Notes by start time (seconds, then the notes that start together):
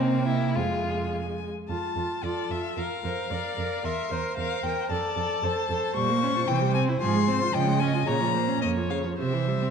0.00 C3 A#3 C4 G5
0.27 E4
0.55 F2 G#3 F4 G#5
1.69 F2 F4 A5
1.96 F2 F4
2.23 F2 F4 A4 D5
2.50 F2 F4 E5
2.77 F2 A#4 F5
3.04 F2 A#4 C5
3.31 F2 A#4 D5
3.58 F2 A#4
3.84 E2 A#4 E5 C6
4.11 E2 A#4 C5
4.37 E2 A#4 F5
4.63 E2 A#4 G5
4.90 F2 A4 D5 A5
5.16 F2 A4
5.43 F2 A4 C5
5.69 F2 A4
5.95 A#2 G3 C#6
6.10 A#3
6.23 C#4
6.36 F4
6.48 C3 E3 G5
6.62 G3
6.74 C4 G#5
6.89 E4
7.01 G#2 F3 G#4 C6
7.15 G#3
7.28 C4 C5
7.41 F4
7.54 C#3 F3 D#5 G5
7.68 G#3
7.80 C#4 G#5
7.94 F4
8.06 A#2 C#3 C#5 A#5
8.20 F3
8.35 A#3 C5
8.48 C#4
8.61 F2 A#3 C#5 D#5
8.77 F3
8.90 C#3 F5
9.05 F3
9.19 C3 C5 E5
9.33 E3
9.48 G3
9.62 C4